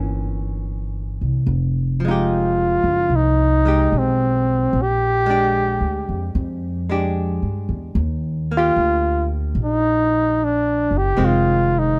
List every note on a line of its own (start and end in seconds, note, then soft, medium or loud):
0.00 1.17 G1 medium
0.00 1.47 E3 soft
0.00 1.47 A#3 soft
0.00 1.48 C#4 soft
1.21 1.45 C2 soft
1.47 2.81 F1 medium
2.00 4.72 F3 soft
2.05 3.64 G#3 soft
2.05 3.66 D#4 soft
2.05 3.17 F4 medium
2.11 3.67 G4 soft
2.84 3.08 F#1 medium
3.10 3.88 C2 medium
3.16 4.00 D#4 medium
3.65 4.73 G#3 soft
3.65 4.73 D#4 soft
3.65 4.74 G4 soft
3.92 4.69 B1 medium
3.98 4.83 C4 medium
4.73 5.77 A#1 medium
4.82 6.40 G4 medium
5.26 6.88 G#3 soft
5.26 6.90 D4 soft
5.31 6.91 G4 soft
5.81 6.06 D2 soft
6.09 6.34 F2 soft
6.35 7.38 F2 medium
6.90 7.96 G#3 soft
6.90 7.96 D4 soft
6.90 7.97 G4 soft
7.42 7.67 G2 medium
7.69 7.94 E2 medium
7.95 8.71 D#2 medium
8.51 11.17 A#3 soft
8.57 9.30 F4 medium
8.57 11.20 G4 soft
8.76 9.52 D2 medium
9.55 10.86 A#1 medium
9.64 10.46 D#4 medium
10.44 10.99 D4 medium
10.91 11.15 F#1 soft
10.98 11.26 G4 medium
11.17 12.00 F1 medium
11.17 12.00 D#3 soft
11.17 12.00 G#3 soft
11.17 12.00 C4 soft
11.25 11.80 F4 medium
11.79 12.00 D#4 medium